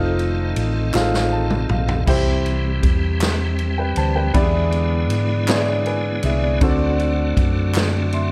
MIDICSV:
0, 0, Header, 1, 6, 480
1, 0, Start_track
1, 0, Key_signature, 0, "major"
1, 0, Tempo, 755668
1, 1319, Time_signature, 6, 3, 24, 8
1, 5283, End_track
2, 0, Start_track
2, 0, Title_t, "Upright piano"
2, 0, Program_c, 0, 0
2, 0, Control_c, 0, 64, 127
2, 0, Note_on_c, 0, 63, 98
2, 0, Note_on_c, 0, 65, 94
2, 0, Note_on_c, 0, 69, 95
2, 0, Note_on_c, 0, 72, 90
2, 0, Note_on_c, 0, 74, 84
2, 0, Note_on_c, 0, 75, 114
2, 321, Note_off_c, 0, 63, 0
2, 324, Note_off_c, 0, 65, 0
2, 325, Note_off_c, 0, 69, 0
2, 326, Note_off_c, 0, 72, 0
2, 328, Note_off_c, 0, 75, 0
2, 592, Note_on_c, 0, 63, 82
2, 596, Note_on_c, 0, 65, 71
2, 601, Note_on_c, 0, 68, 60
2, 601, Note_on_c, 0, 72, 73
2, 605, Note_on_c, 0, 77, 92
2, 640, Note_on_c, 0, 69, 73
2, 641, Note_off_c, 0, 68, 0
2, 840, Note_on_c, 0, 81, 67
2, 1041, Note_off_c, 0, 63, 0
2, 1043, Note_off_c, 0, 65, 0
2, 1046, Note_off_c, 0, 72, 0
2, 1048, Note_off_c, 0, 77, 0
2, 1063, Note_off_c, 0, 81, 0
2, 1065, Note_off_c, 0, 69, 0
2, 1079, Note_on_c, 0, 77, 67
2, 1302, Note_off_c, 0, 77, 0
2, 1311, Note_on_c, 0, 64, 94
2, 1318, Note_on_c, 0, 48, 74
2, 1320, Note_on_c, 0, 67, 91
2, 1327, Note_on_c, 0, 72, 103
2, 1328, Control_c, 0, 64, 0
2, 1333, Note_off_c, 0, 74, 0
2, 1455, Control_c, 0, 64, 127
2, 1761, Note_off_c, 0, 64, 0
2, 1765, Note_off_c, 0, 67, 0
2, 1769, Note_off_c, 0, 72, 0
2, 2013, Note_off_c, 0, 48, 0
2, 2401, Note_on_c, 0, 79, 66
2, 2407, Note_on_c, 0, 71, 58
2, 2514, Note_off_c, 0, 79, 0
2, 2517, Note_off_c, 0, 71, 0
2, 2523, Note_on_c, 0, 81, 77
2, 2524, Note_on_c, 0, 72, 62
2, 2635, Note_off_c, 0, 81, 0
2, 2636, Note_off_c, 0, 72, 0
2, 2639, Note_on_c, 0, 79, 69
2, 2642, Note_on_c, 0, 71, 60
2, 2756, Note_on_c, 0, 59, 103
2, 2760, Note_on_c, 0, 62, 92
2, 2760, Note_on_c, 0, 64, 93
2, 2762, Note_on_c, 0, 52, 83
2, 2765, Note_on_c, 0, 67, 76
2, 2768, Control_c, 0, 64, 0
2, 2768, Note_on_c, 0, 74, 110
2, 2803, Note_off_c, 0, 67, 0
2, 2804, Note_on_c, 0, 68, 91
2, 2867, Note_off_c, 0, 79, 0
2, 2869, Note_off_c, 0, 71, 0
2, 2885, Control_c, 0, 64, 127
2, 3203, Note_off_c, 0, 59, 0
2, 3205, Note_off_c, 0, 62, 0
2, 3206, Note_off_c, 0, 64, 0
2, 3209, Note_off_c, 0, 74, 0
2, 3227, Note_off_c, 0, 68, 0
2, 3455, Note_off_c, 0, 52, 0
2, 3477, Note_on_c, 0, 59, 84
2, 3478, Note_on_c, 0, 62, 78
2, 3483, Note_on_c, 0, 64, 82
2, 3486, Note_on_c, 0, 68, 74
2, 3488, Note_on_c, 0, 73, 79
2, 3525, Note_off_c, 0, 73, 0
2, 3528, Note_on_c, 0, 74, 95
2, 3723, Note_off_c, 0, 68, 0
2, 3725, Note_on_c, 0, 80, 70
2, 3729, Note_on_c, 0, 71, 60
2, 3744, Note_off_c, 0, 74, 0
2, 3924, Note_off_c, 0, 59, 0
2, 3925, Note_off_c, 0, 62, 0
2, 3927, Note_off_c, 0, 64, 0
2, 3950, Note_off_c, 0, 80, 0
2, 3952, Note_off_c, 0, 71, 0
2, 3966, Note_on_c, 0, 76, 76
2, 3969, Note_on_c, 0, 68, 65
2, 4077, Note_off_c, 0, 76, 0
2, 4078, Note_off_c, 0, 68, 0
2, 4083, Note_on_c, 0, 74, 70
2, 4198, Note_on_c, 0, 60, 102
2, 4201, Note_on_c, 0, 62, 94
2, 4204, Note_on_c, 0, 50, 83
2, 4205, Note_on_c, 0, 66, 94
2, 4206, Control_c, 0, 64, 0
2, 4209, Note_on_c, 0, 69, 88
2, 4211, Note_on_c, 0, 72, 84
2, 4242, Note_off_c, 0, 74, 0
2, 4247, Note_off_c, 0, 72, 0
2, 4252, Note_on_c, 0, 74, 114
2, 4333, Control_c, 0, 64, 127
2, 4644, Note_off_c, 0, 60, 0
2, 4646, Note_off_c, 0, 62, 0
2, 4648, Note_off_c, 0, 66, 0
2, 4650, Note_off_c, 0, 69, 0
2, 4671, Note_off_c, 0, 74, 0
2, 4896, Note_off_c, 0, 50, 0
2, 5164, Note_on_c, 0, 84, 67
2, 5170, Note_on_c, 0, 76, 60
2, 5276, Note_off_c, 0, 84, 0
2, 5279, Note_off_c, 0, 76, 0
2, 5283, End_track
3, 0, Start_track
3, 0, Title_t, "Analog synth pad"
3, 0, Program_c, 1, 89
3, 0, Note_on_c, 1, 57, 76
3, 0, Note_on_c, 1, 60, 68
3, 0, Note_on_c, 1, 63, 69
3, 0, Note_on_c, 1, 65, 80
3, 1292, Note_off_c, 1, 57, 0
3, 1292, Note_off_c, 1, 60, 0
3, 1292, Note_off_c, 1, 63, 0
3, 1293, Note_off_c, 1, 65, 0
3, 5283, End_track
4, 0, Start_track
4, 0, Title_t, "Tonewheel organ"
4, 0, Program_c, 2, 16
4, 0, Note_on_c, 2, 51, 64
4, 0, Note_on_c, 2, 60, 56
4, 0, Note_on_c, 2, 65, 60
4, 0, Note_on_c, 2, 69, 73
4, 1294, Note_off_c, 2, 51, 0
4, 1294, Note_off_c, 2, 60, 0
4, 1294, Note_off_c, 2, 69, 0
4, 1295, Note_off_c, 2, 65, 0
4, 1323, Note_on_c, 2, 55, 63
4, 1323, Note_on_c, 2, 67, 75
4, 1324, Note_on_c, 2, 60, 63
4, 1326, Note_on_c, 2, 52, 69
4, 2747, Note_off_c, 2, 55, 0
4, 2747, Note_off_c, 2, 60, 0
4, 2747, Note_off_c, 2, 67, 0
4, 2748, Note_off_c, 2, 52, 0
4, 2767, Note_on_c, 2, 56, 61
4, 2768, Note_on_c, 2, 50, 72
4, 2768, Note_on_c, 2, 59, 63
4, 2768, Note_on_c, 2, 64, 80
4, 4189, Note_off_c, 2, 56, 0
4, 4189, Note_off_c, 2, 59, 0
4, 4189, Note_off_c, 2, 64, 0
4, 4197, Note_on_c, 2, 66, 83
4, 4198, Note_on_c, 2, 57, 63
4, 4200, Note_on_c, 2, 60, 65
4, 5283, Note_off_c, 2, 50, 0
4, 5283, Note_off_c, 2, 57, 0
4, 5283, Note_off_c, 2, 60, 0
4, 5283, Note_off_c, 2, 66, 0
4, 5283, End_track
5, 0, Start_track
5, 0, Title_t, "Fingered electric bass"
5, 0, Program_c, 3, 33
5, 0, Note_on_c, 3, 29, 106
5, 333, Note_off_c, 3, 29, 0
5, 359, Note_on_c, 3, 33, 91
5, 579, Note_off_c, 3, 33, 0
5, 601, Note_on_c, 3, 33, 85
5, 1054, Note_off_c, 3, 33, 0
5, 1078, Note_on_c, 3, 34, 89
5, 1299, Note_off_c, 3, 34, 0
5, 1318, Note_on_c, 3, 36, 108
5, 1773, Note_off_c, 3, 36, 0
5, 1797, Note_on_c, 3, 40, 92
5, 2493, Note_off_c, 3, 40, 0
5, 2523, Note_on_c, 3, 38, 92
5, 2742, Note_off_c, 3, 38, 0
5, 2758, Note_on_c, 3, 40, 110
5, 3241, Note_off_c, 3, 40, 0
5, 3241, Note_on_c, 3, 44, 95
5, 3935, Note_off_c, 3, 44, 0
5, 3961, Note_on_c, 3, 36, 95
5, 4181, Note_off_c, 3, 36, 0
5, 4202, Note_on_c, 3, 38, 108
5, 4655, Note_off_c, 3, 38, 0
5, 4681, Note_on_c, 3, 42, 92
5, 5283, Note_off_c, 3, 42, 0
5, 5283, End_track
6, 0, Start_track
6, 0, Title_t, "Drums"
6, 121, Note_on_c, 9, 51, 46
6, 185, Note_off_c, 9, 51, 0
6, 357, Note_on_c, 9, 51, 64
6, 420, Note_off_c, 9, 51, 0
6, 596, Note_on_c, 9, 39, 89
6, 606, Note_on_c, 9, 38, 61
6, 659, Note_off_c, 9, 39, 0
6, 670, Note_off_c, 9, 38, 0
6, 724, Note_on_c, 9, 38, 61
6, 788, Note_off_c, 9, 38, 0
6, 955, Note_on_c, 9, 47, 79
6, 1019, Note_off_c, 9, 47, 0
6, 1076, Note_on_c, 9, 45, 93
6, 1139, Note_off_c, 9, 45, 0
6, 1197, Note_on_c, 9, 43, 95
6, 1261, Note_off_c, 9, 43, 0
6, 1317, Note_on_c, 9, 49, 103
6, 1318, Note_on_c, 9, 36, 108
6, 1380, Note_off_c, 9, 49, 0
6, 1381, Note_off_c, 9, 36, 0
6, 1561, Note_on_c, 9, 51, 49
6, 1624, Note_off_c, 9, 51, 0
6, 1798, Note_on_c, 9, 36, 94
6, 1799, Note_on_c, 9, 51, 68
6, 1862, Note_off_c, 9, 36, 0
6, 1862, Note_off_c, 9, 51, 0
6, 2038, Note_on_c, 9, 51, 71
6, 2041, Note_on_c, 9, 39, 93
6, 2049, Note_on_c, 9, 38, 117
6, 2102, Note_off_c, 9, 51, 0
6, 2104, Note_off_c, 9, 39, 0
6, 2113, Note_off_c, 9, 38, 0
6, 2278, Note_on_c, 9, 51, 45
6, 2341, Note_off_c, 9, 51, 0
6, 2515, Note_on_c, 9, 51, 61
6, 2578, Note_off_c, 9, 51, 0
6, 2759, Note_on_c, 9, 36, 106
6, 2759, Note_on_c, 9, 51, 72
6, 2822, Note_off_c, 9, 51, 0
6, 2823, Note_off_c, 9, 36, 0
6, 3000, Note_on_c, 9, 51, 49
6, 3064, Note_off_c, 9, 51, 0
6, 3239, Note_on_c, 9, 51, 68
6, 3303, Note_off_c, 9, 51, 0
6, 3479, Note_on_c, 9, 51, 70
6, 3481, Note_on_c, 9, 39, 98
6, 3490, Note_on_c, 9, 38, 121
6, 3542, Note_off_c, 9, 51, 0
6, 3544, Note_off_c, 9, 39, 0
6, 3553, Note_off_c, 9, 38, 0
6, 3720, Note_on_c, 9, 51, 45
6, 3783, Note_off_c, 9, 51, 0
6, 3955, Note_on_c, 9, 51, 67
6, 4018, Note_off_c, 9, 51, 0
6, 4199, Note_on_c, 9, 51, 72
6, 4200, Note_on_c, 9, 36, 102
6, 4263, Note_off_c, 9, 51, 0
6, 4264, Note_off_c, 9, 36, 0
6, 4443, Note_on_c, 9, 51, 47
6, 4507, Note_off_c, 9, 51, 0
6, 4681, Note_on_c, 9, 36, 96
6, 4682, Note_on_c, 9, 51, 68
6, 4744, Note_off_c, 9, 36, 0
6, 4745, Note_off_c, 9, 51, 0
6, 4919, Note_on_c, 9, 39, 96
6, 4924, Note_on_c, 9, 51, 71
6, 4935, Note_on_c, 9, 38, 125
6, 4983, Note_off_c, 9, 39, 0
6, 4987, Note_off_c, 9, 51, 0
6, 4998, Note_off_c, 9, 38, 0
6, 5161, Note_on_c, 9, 51, 45
6, 5225, Note_off_c, 9, 51, 0
6, 5283, End_track
0, 0, End_of_file